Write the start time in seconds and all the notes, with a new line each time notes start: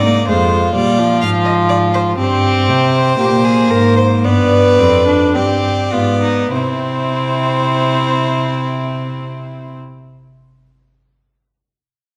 Already playing: G#2 D#4 D5
0.05 A#3
0.28 F2 G#3 F4 C5
0.75 A#2 G3 D5
0.98 F3
1.21 G#2 F5
1.45 D#5
1.69 D5
1.94 C5
2.18 G2 C4 G4 C5
2.68 C3
3.18 A#2 A#3 G4
3.44 G#4
3.70 G#2 A#4
3.97 C5
4.24 G2 B3 B4 D5
4.79 F2 C4
5.07 D4
5.34 G2 C4 G4 D5
5.93 G#2 B3 F4
6.22 D#4
6.52 C3 C4 E4 C5